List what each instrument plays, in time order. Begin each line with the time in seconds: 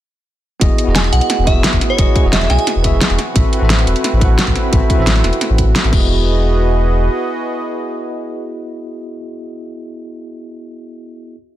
0.60 sub bass E1, tine electric piano B3 E4 F#4 G#4 D#5, analog synth pad B3 F#4 G#4, kick, closed hi-hat
0.78 closed hi-hat
0.84 sub bass E1, tine electric piano B3 E4 F#4
0.89 tine electric piano G#4 D#5
0.95 synth bell G#5, snare, closed hi-hat
1.04 closed hi-hat
1.13 sub bass B1, synth bell F#5, closed hi-hat
1.21 closed hi-hat
1.30 snare, closed hi-hat
1.38 sub bass E1
1.44 tine electric piano B3 E4 F#4, synth bell E5, kick, closed hi-hat
1.49 tine electric piano G#4 E5
1.64 snare, closed hi-hat
1.73 sub bass E1, kick, closed hi-hat
1.81 snare, closed hi-hat
1.90 synth bell C#5
1.97 sub bass E1, tine electric piano B3 E4 F#4 G#4 D#5, kick, closed hi-hat
2.16 kick, closed hi-hat
2.21 sub bass E1, tine electric piano B3 E4 F#4
2.26 tine electric piano G#4 D#5
2.33 synth bell E5, snare, closed hi-hat
2.41 snare, closed hi-hat
2.50 sub bass B1, synth bell G#5, snare, closed hi-hat
2.59 closed hi-hat
2.67 snare, closed hi-hat
2.76 sub bass E1
2.83 tine electric piano B3 E4 F#4 G#4 E5, kick, closed hi-hat
3.01 snare, closed hi-hat
3.10 sub bass E1, closed hi-hat
3.18 analog synth pad C4 E4 B4, snare, closed hi-hat
3.34 sub bass A1, tine electric piano C4 E4 F#4 A4 E5, kick, closed hi-hat
3.53 closed hi-hat
3.58 sub bass A1, tine electric piano C4 E4 F#4
3.63 tine electric piano A4 E5
3.70 snare, closed hi-hat
3.79 closed hi-hat
3.87 sub bass E1, closed hi-hat
3.96 closed hi-hat
4.04 snare, closed hi-hat
4.13 sub bass A1
4.18 tine electric piano C4 E4 F#4, kick, closed hi-hat
4.23 tine electric piano A4 F#5
4.38 snare, closed hi-hat
4.47 sub bass A1, kick, closed hi-hat
4.56 snare, closed hi-hat
4.71 sub bass A1, tine electric piano C4 E4 F#4 A4 E5, kick, closed hi-hat
4.90 kick, closed hi-hat
4.96 sub bass A1, tine electric piano C4 E4 F#4
5.00 tine electric piano A4 E5
5.07 snare, closed hi-hat
5.16 snare, closed hi-hat
5.24 sub bass E1, snare, closed hi-hat
5.33 closed hi-hat
5.41 snare, closed hi-hat
5.50 sub bass A1
5.58 kick, closed hi-hat
5.76 snare, closed hi-hat
5.83 sub bass A1, tine electric piano C4 E4 F#4 A4 E5, closed hi-hat
5.88 tine electric piano B3 E4
5.93 sub bass E1, analog synth pad F#4 G#4 B4 D#5, tine electric piano F#4 G#4, kick, crash
5.98 tine electric piano D#5